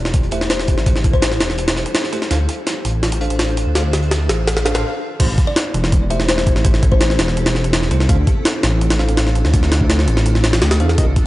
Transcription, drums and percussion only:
0.05 snare medium
0.14 kick loud
0.14 closed hi-hat medium
0.23 closed hi-hat soft
0.31 closed hi-hat medium
0.41 snare medium
0.50 snare loud
0.50 closed hi-hat medium
0.59 snare medium
0.59 closed hi-hat soft
0.67 kick medium
0.67 closed hi-hat medium
0.78 snare soft
0.86 kick loud
0.86 closed hi-hat medium
0.96 snare soft
1.04 kick medium
1.04 closed hi-hat medium
1.13 kick medium
1.13 closed hi-hat soft
1.22 snare loud
1.22 closed hi-hat medium
1.32 snare soft
1.40 snare loud
1.40 closed hi-hat medium
1.50 snare soft
1.58 closed hi-hat medium
1.68 snare loud
1.68 closed hi-hat medium
1.77 snare soft
1.77 closed hi-hat medium
1.86 closed hi-hat medium
1.95 snare loud
1.95 closed hi-hat medium
1.95 open hi-hat medium
2.04 snare soft
2.12 snare soft
2.12 closed hi-hat medium
2.21 snare soft
2.31 snare soft
2.31 closed hi-hat medium
2.49 closed hi-hat medium
2.67 snare loud
2.67 snare medium
2.67 closed hi-hat medium
2.85 closed hi-hat medium
3.03 snare medium
3.03 closed hi-hat medium
3.12 closed hi-hat soft
3.12 closed hi-hat medium
3.21 closed hi-hat medium
3.30 closed hi-hat medium
3.39 snare loud
3.39 snare medium
3.39 closed hi-hat medium
3.48 closed hi-hat soft
3.57 closed hi-hat medium
3.75 snare medium
3.75 closed hi-hat medium
3.75 closed hi-hat loud
3.93 snare medium
3.93 closed hi-hat medium
4.02 closed hi-hat soft
4.11 snare medium
4.11 snare loud
4.11 closed hi-hat medium
4.29 snare medium
4.29 closed hi-hat medium
4.47 snare medium
4.47 closed hi-hat medium
4.57 snare medium
4.66 snare medium
4.66 closed hi-hat medium
4.75 snare medium
4.75 closed hi-hat medium
5.20 kick loud
5.20 closed hi-hat medium
5.20 crash medium
5.38 kick loud
5.38 closed hi-hat medium
5.56 snare loud
5.56 closed hi-hat medium
5.74 closed hi-hat medium
5.84 snare medium
5.92 kick loud
5.92 closed hi-hat medium
6.10 closed hi-hat medium
6.20 snare medium
6.29 snare loud
6.29 closed hi-hat medium
6.38 snare medium
6.47 kick medium
6.47 closed hi-hat medium
6.56 snare soft
6.65 kick loud
6.65 closed hi-hat medium
6.74 snare soft
6.83 kick loud
6.83 closed hi-hat medium
6.92 kick medium
7.01 snare loud
7.01 closed hi-hat medium
7.10 snare soft
7.19 snare loud
7.19 closed hi-hat medium
7.28 snare soft
7.37 closed hi-hat medium
7.46 snare loud
7.46 closed hi-hat medium
7.55 snare soft
7.64 closed hi-hat medium
7.73 snare loud
7.73 closed hi-hat medium
7.82 snare soft
7.91 closed hi-hat medium
8.00 snare soft
8.09 kick loud
8.09 closed hi-hat medium
8.27 kick loud
8.27 closed hi-hat medium
8.45 snare loud
8.45 closed hi-hat medium
8.63 snare loud
8.63 closed hi-hat medium
8.81 closed hi-hat medium
8.90 snare loud
8.90 closed hi-hat medium
8.99 snare soft
9.09 closed hi-hat medium
9.17 snare loud
9.17 closed hi-hat medium
9.27 snare soft
9.35 closed hi-hat medium
9.45 snare soft
9.54 kick loud
9.54 closed hi-hat medium
9.63 snare soft
9.72 snare loud
9.72 closed hi-hat medium
9.81 kick medium
9.90 snare loud
9.90 closed hi-hat medium
9.99 snare soft
10.08 closed hi-hat medium
10.17 snare medium
10.26 closed hi-hat medium
10.35 snare soft
10.44 snare loud
10.44 closed hi-hat medium
10.53 snare loud
10.53 closed hi-hat medium
10.62 snare loud
10.62 closed hi-hat medium
10.71 snare loud
10.71 closed hi-hat medium
10.80 closed hi-hat medium
10.89 snare soft
10.98 kick loud
10.98 closed hi-hat medium
11.16 kick medium
11.16 closed hi-hat medium

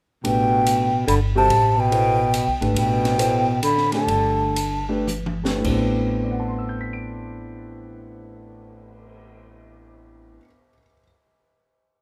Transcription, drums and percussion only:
0.25 ride medium
0.67 hi-hat pedal medium
0.67 ride medium
1.08 hi-hat pedal medium
1.08 ride medium
1.50 ride soft
1.92 ride soft
2.34 hi-hat pedal soft
2.34 ride medium
2.62 ride soft
2.76 ride medium
3.05 snare soft
3.05 ride soft
3.19 hi-hat pedal soft
3.19 ride medium
3.63 hi-hat pedal soft
3.63 ride medium
3.77 snare soft
3.92 snare soft
3.92 ride soft
4.08 ride soft
4.56 hi-hat pedal soft
4.56 ride medium
5.07 hi-hat pedal medium
5.07 mid tom soft
5.26 mid tom soft
5.45 snare medium
5.64 kick medium
5.64 crash medium
6.04 cymbal swell soft

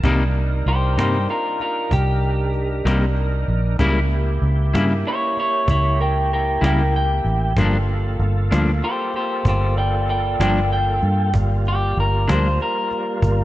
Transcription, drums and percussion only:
0.04 cajon bass loud
0.35 cajon slap soft
0.66 cajon slap soft
0.99 cajon slap medium
1.29 cajon slap soft
1.60 cajon slap soft
1.91 cajon bass loud
2.23 cajon slap soft
2.54 cajon slap soft
2.87 cajon slap medium
3.17 cajon slap soft
3.48 cajon slap soft
3.79 cajon bass medium
4.11 cajon slap soft
4.42 cajon slap soft
4.75 cajon slap medium
5.05 cajon slap soft
5.37 cajon slap soft
5.68 cajon bass loud
6.00 cajon slap soft
6.32 cajon slap soft
6.64 cajon slap loud
6.94 cajon slap soft
7.26 cajon slap soft
7.57 cajon bass loud
7.89 cajon slap soft
8.20 cajon slap soft
8.52 cajon slap medium
8.83 cajon slap soft
9.14 cajon slap soft
9.45 cajon bass medium
9.76 cajon slap soft
10.08 cajon slap soft
10.41 cajon slap loud
10.71 cajon slap soft
11.02 cajon slap soft
11.34 cajon bass medium
11.65 cajon slap soft
11.97 cajon slap soft
12.29 cajon slap loud
12.59 cajon slap soft
12.91 cajon slap soft
13.22 cajon bass loud

